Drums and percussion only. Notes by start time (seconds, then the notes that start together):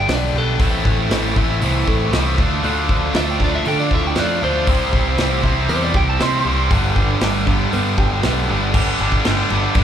0.09 snare, open hi-hat
0.59 kick, open hi-hat
0.85 kick
1.11 snare, open hi-hat
1.36 kick
1.62 open hi-hat
1.87 kick
2.13 snare, open hi-hat
2.38 kick
2.64 open hi-hat
2.89 kick
3.14 snare, open hi-hat
3.40 kick
3.65 open hi-hat
3.91 kick
4.15 snare, open hi-hat
4.67 kick, open hi-hat
4.93 kick
5.18 snare, open hi-hat
5.44 kick
5.69 open hi-hat
5.94 kick
6.20 snare, open hi-hat
6.71 kick, open hi-hat
6.96 kick
7.21 snare, open hi-hat
7.47 kick
7.73 open hi-hat
7.98 kick
8.23 snare, open hi-hat
8.74 kick, crash
8.99 crash
9.12 kick
9.25 snare, crash
9.50 crash
9.75 kick, crash